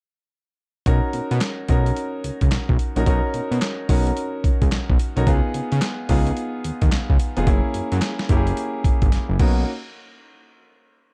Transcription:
0.86 1.01 B1 medium
0.86 1.53 C#4 medium
0.86 1.53 D#4 medium
0.86 1.54 F#4 medium
0.86 1.54 A#4 loud
0.86 kick loud
0.86 closed hi-hat medium
1.13 1.21 B2 soft
1.13 closed hi-hat medium
1.31 1.40 B2 loud
1.31 closed hi-hat soft
1.41 snare loud
1.41 clap medium
1.41 closed hi-hat medium
1.68 1.92 B1 medium
1.68 2.56 C#4 medium
1.68 2.56 D#4 medium
1.68 2.56 F#4 medium
1.68 2.56 A#4 medium
1.68 kick medium
1.68 closed hi-hat medium
1.86 closed hi-hat medium
1.97 closed hi-hat medium
2.24 2.31 C#2 soft
2.24 closed hi-hat medium
2.41 2.50 C#2 medium
2.41 kick medium
2.41 closed hi-hat medium
2.51 2.58 B1 medium
2.51 snare loud
2.51 clap medium
2.51 closed hi-hat medium
2.69 2.78 B1 medium
2.69 kick medium
2.79 closed hi-hat medium
2.96 3.05 A#1 medium
2.96 3.04 C#4 medium
2.96 3.04 D#4 medium
2.96 3.05 F#4 medium
2.96 3.05 A#4 medium
2.96 closed hi-hat medium
3.06 3.21 B1 loud
3.06 3.74 C#4 medium
3.06 3.74 D#4 medium
3.06 3.74 F#4 medium
3.06 3.74 A#4 medium
3.06 kick loud
3.06 closed hi-hat medium
3.34 3.41 B2 soft
3.34 closed hi-hat medium
3.51 3.60 B2 loud
3.51 closed hi-hat medium
3.62 snare loud
3.62 clap medium
3.62 closed hi-hat medium
3.89 4.12 B1 medium
3.89 4.76 C#4 medium
3.89 4.76 D#4 medium
3.89 4.76 F#4 medium
3.89 4.77 A#4 medium
3.89 kick medium
3.89 open hi-hat medium
4.07 closed hi-hat medium
4.17 closed hi-hat medium
4.44 4.51 C#2 soft
4.44 kick loud
4.44 closed hi-hat medium
4.62 4.70 C#2 medium
4.62 kick loud
4.62 closed hi-hat medium
4.72 4.79 B1 soft
4.72 snare loud
4.72 clap medium
4.72 closed hi-hat medium
4.90 4.98 B1 medium
4.90 kick medium
4.99 closed hi-hat medium
5.16 5.25 B1 medium
5.16 5.24 C#4 medium
5.16 5.25 D#4 medium
5.16 5.25 F#4 medium
5.16 5.25 A#4 loud
5.16 closed hi-hat medium
5.27 5.41 C#2 loud
5.27 5.94 B3 medium
5.27 5.94 D#4 medium
5.27 5.94 F4 medium
5.27 5.94 G#4 medium
5.27 kick loud
5.27 closed hi-hat medium
5.54 5.61 C#3 soft
5.54 closed hi-hat medium
5.72 5.80 C#3 loud
5.72 closed hi-hat medium
5.82 snare loud
5.82 clap medium
5.82 closed hi-hat medium
6.09 6.32 C#2 loud
6.09 6.96 B3 medium
6.09 6.96 D#4 medium
6.09 6.96 F4 medium
6.09 6.97 G#4 medium
6.09 kick medium
6.09 open hi-hat medium
6.27 closed hi-hat medium
6.37 closed hi-hat medium
6.64 6.72 D#2 soft
6.64 closed hi-hat medium
6.82 6.90 D#2 medium
6.82 kick loud
6.82 closed hi-hat medium
6.92 6.99 C#2 medium
6.92 snare loud
6.92 clap loud
6.92 closed hi-hat medium
7.10 7.18 C#2 loud
7.10 kick medium
7.20 closed hi-hat medium
7.37 7.46 F1 medium
7.37 7.45 B3 medium
7.37 7.45 D#4 medium
7.37 7.45 F4 medium
7.37 7.45 G#4 medium
7.37 closed hi-hat medium
7.47 7.62 F#1 loud
7.47 8.14 A#3 medium
7.47 8.14 C#4 medium
7.47 8.14 E4 medium
7.47 8.14 G#4 medium
7.47 kick loud
7.47 closed hi-hat medium
7.74 7.82 F#2 soft
7.74 closed hi-hat medium
7.92 8.01 F#2 loud
7.92 closed hi-hat medium
8.02 snare loud
8.02 clap medium
8.02 closed hi-hat medium
8.19 snare medium
8.29 8.53 F#1 loud
8.29 9.16 A#3 medium
8.29 9.16 C#4 medium
8.29 9.17 E4 medium
8.29 8.38 G4 medium
8.29 kick medium
8.29 closed hi-hat medium
8.37 9.20 G#4 medium
8.47 closed hi-hat medium
8.57 closed hi-hat medium
8.84 8.91 G#1 soft
8.84 kick loud
8.84 closed hi-hat medium
9.02 9.11 G#1 medium
9.02 kick loud
9.02 closed hi-hat medium
9.12 9.19 F#1 soft
9.12 snare medium
9.12 closed hi-hat medium
9.29 9.38 F#1 medium
9.39 9.65 B1 loud
9.39 9.65 A#3 medium
9.39 9.65 C#4 medium
9.39 9.65 D#4 medium
9.39 9.65 F#4 medium
9.39 kick loud
9.39 crash medium

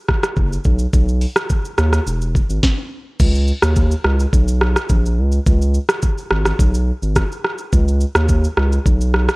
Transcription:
0.09 kick medium
0.09 cross-stick medium
0.23 cross-stick loud
0.23 shaker soft
0.36 0.58 F#1 medium
0.36 kick medium
0.36 shaker medium
0.53 shaker medium
0.64 0.87 B1 loud
0.64 kick medium
0.64 shaker medium
0.79 shaker medium
0.93 1.26 B1 loud
0.93 kick loud
0.93 shaker medium
1.09 shaker medium
1.21 open hi-hat soft
1.21 shaker soft
1.36 cross-stick loud
1.36 shaker medium
1.50 kick loud
1.50 shaker medium
1.65 shaker medium
1.78 2.00 D#2 loud
1.78 cross-stick loud
1.78 shaker medium
1.93 cross-stick medium
1.93 shaker medium
2.07 2.39 E1 loud
2.07 shaker medium
2.22 shaker medium
2.35 kick medium
2.35 shaker soft
2.50 2.60 G#1 medium
2.50 shaker soft
2.63 kick loud
2.63 snare medium
3.20 3.52 C#2 loud
3.20 kick loud
3.20 crash loud
3.20 shaker medium
3.35 shaker medium
3.48 shaker medium
3.63 3.94 D#2 loud
3.63 cross-stick loud
3.63 shaker medium
3.76 kick loud
3.76 shaker medium
3.91 shaker medium
4.04 4.26 C#2 loud
4.04 cross-stick loud
4.20 shaker medium
4.33 4.76 B1 loud
4.33 kick loud
4.33 shaker medium
4.48 shaker medium
4.61 cross-stick loud
4.76 cross-stick loud
4.76 shaker soft
4.89 5.19 A#1 loud
4.89 kick loud
4.89 shaker medium
5.05 shaker medium
5.18 5.39 C#2 loud
5.32 shaker soft
5.46 5.79 C#2 loud
5.46 kick loud
5.46 shaker medium
5.62 shaker soft
5.74 shaker medium
5.89 cross-stick loud
5.89 shaker medium
6.02 kick loud
6.02 shaker medium
6.18 shaker medium
6.31 6.53 G#1 loud
6.31 cross-stick loud
6.46 cross-stick loud
6.46 shaker medium
6.59 6.92 B1 medium
6.59 kick loud
6.59 shaker medium
6.74 shaker medium
7.03 7.24 G#1 medium
7.03 shaker soft
7.16 kick medium
7.16 cross-stick medium
7.16 shaker medium
7.32 shaker medium
7.44 cross-stick medium
7.58 shaker medium
7.73 8.05 C#2 loud
7.73 kick loud
7.73 shaker medium
7.88 shaker soft
8.01 shaker medium
8.15 8.47 D#2 loud
8.15 cross-stick loud
8.15 shaker medium
8.29 kick loud
8.29 shaker medium
8.44 shaker medium
8.57 8.79 C#2 medium
8.57 cross-stick loud
8.72 shaker medium
8.86 9.28 B1 loud
8.86 kick loud
8.86 shaker medium
9.01 shaker medium
9.14 cross-stick medium
9.29 cross-stick loud
9.29 shaker soft

